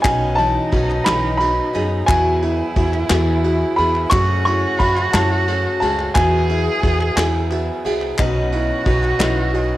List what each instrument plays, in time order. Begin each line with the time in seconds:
0.02 grand piano B1 B2 B3 D#4 F#4 C#5 D#5, upright bass B1, steel-string acoustic guitar B2 D#3 F#3 C#4 D#4 B4, cello D#4, upright piano F#4 G#5, kick, clap, ride
0.35 upright piano E3 A5, grand piano B3 D#4 F#4 C#5 D#5, ride
0.72 upright bass B1, steel-string acoustic guitar F#3 C#4 D#4 B4, grand piano B3 D#4 F#4 C#5 D#5, upright piano F#4, kick, ride
0.90 clap
1.04 upright bass B1, steel-string acoustic guitar B2 D#3 F#3 C#4 D#4 B4, upright piano E3 B5, grand piano B3 D#4 F#4 C#5 D#5, snare, clap, ride
1.37 grand piano B3 D#4 F#4 C#5 D#5, upright piano F#4 B5, ride
1.73 upright bass F#2, steel-string acoustic guitar F#3 C#4 D#4 B4, grand piano B3 D#4 F#4 C#5 D#5, upright piano G#4, ride
2.06 grand piano E2 E3 B3 E4 F#4 G#4 E5, upright bass E2, steel-string acoustic guitar E3 F#3 B3 F#4 G#4, cello E4, upright piano F#4 G#5, kick, clap, ride
2.42 grand piano B3 E4 F#4 G#4 E5, upright piano E4, ride
2.75 upright bass E2, steel-string acoustic guitar F#3 B3 F#4 G#4, grand piano B3 E4 F#4 G#4 E5, upright piano F#4, kick, ride
2.94 clap
3.09 upright bass E2, steel-string acoustic guitar E3 F#3 B3 F#4 G#4, grand piano B3 E4 F#4 G#4 E5, upright piano E4, snare, clap, ride
3.44 grand piano B3 E4 F#4 G#4 E5, upright piano F#4, ride
3.76 upright bass E2, grand piano B3 E4 F#4 G#4 E5, steel-string acoustic guitar B3 F#4 G#4, upright piano G#4 B5, ride
3.95 clap
4.10 grand piano F#1 F#2 A3 C#4 F#4 G#4 C#5, upright bass F#2, steel-string acoustic guitar F#3 A3 C#4 F#4, cello F#4, upright piano F#4 C#6, kick, clap, ride
4.14 steel-string acoustic guitar G#4
4.45 grand piano A3 C#4 F#4 G#4 C#5, upright piano E4 C#6, ride
4.79 upright bass F#2, steel-string acoustic guitar A3 C#4 F#4 G#4, grand piano A3 C#4 F#4 G#4 E5, upright piano F#4 B5, kick, ride
4.97 clap
5.13 upright bass F#2, steel-string acoustic guitar F#3 A3 C#4 F#4, grand piano A3 C#4 F#4 G#4 C#5, upright piano E4 A5, snare, clap, ride
5.48 grand piano A3 C#4 F#4 G#4 C#5, upright piano F#4, ride
5.80 upright bass C#2, upright piano G#3 A5, grand piano A3 C#4 F#4 G#4 C#5, steel-string acoustic guitar C#4 F#4, ride
5.99 clap
6.14 upright bass E2, grand piano E2 E3 B3 E4 F#4 G#4 E5, steel-string acoustic guitar E3 F#3 B3 F#4 G#4, upright piano F#4 G#5, cello G#4, kick, clap, ride
6.49 grand piano B3 E4 F#4 G#4 E5, upright piano E4, ride
6.83 upright bass E2, steel-string acoustic guitar F#3 B3 F#4 G#4, grand piano B3 E4 F#4 E5, upright piano F#4, kick, ride
7.01 clap
7.16 upright bass E2, steel-string acoustic guitar E3 F#3 B3 F#4 G#4, grand piano B3 E4 F#4 G#4 E5, upright piano E4 G#5, snare, clap, ride
7.50 grand piano B3 E4 F#4 G#4 E5, upright piano F#4, clap, ride
7.84 upright bass C2, grand piano B3 E4 F#4 G#4 E5, steel-string acoustic guitar B3 F#4 G#4, upright piano G#4, ride
8.01 clap
8.18 grand piano B1 B2 C#4 D#4 F#4 B4 D#5, upright bass B1, steel-string acoustic guitar B2 F#3 C#4 D#4 B4, upright piano F#4, cello F#4, kick, clap, ride
8.52 grand piano C#4 D#4 F#4 B4 D#5, upright piano E4, ride
8.86 upright bass B1, steel-string acoustic guitar F#3 C#4 D#4 B4, grand piano C#4 D#4 F#4 B4 D#5, upright piano F#4, kick, ride
9.03 clap
9.19 upright bass B1, steel-string acoustic guitar B2 F#3 C#4 D#4 B4, grand piano C#4 D#4 F#4 B4 D#5, upright piano E4, snare, clap, ride
9.53 grand piano C#4 D#4 F#4 B4 D#5, upright piano F#4, ride